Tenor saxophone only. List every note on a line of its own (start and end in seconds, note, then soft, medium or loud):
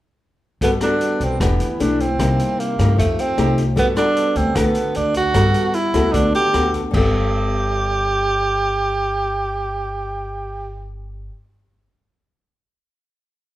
0.63 0.72 B3 medium
0.83 1.25 D4 medium
1.23 1.40 C4 medium
1.41 1.83 B3 medium
1.81 2.02 D4 medium
2.00 2.61 C4 medium
2.59 2.98 A#3 medium
2.99 3.21 A3 medium
3.20 3.58 C4 medium
3.78 3.87 B3 medium
3.97 4.38 D4 medium
4.36 4.58 C4 medium
4.56 4.98 B3 medium
4.96 5.16 D4 medium
5.17 5.76 F#4 loud
5.74 6.14 E4 medium
6.13 6.33 D4 medium
6.35 6.71 G4 medium
6.95 10.87 G4 medium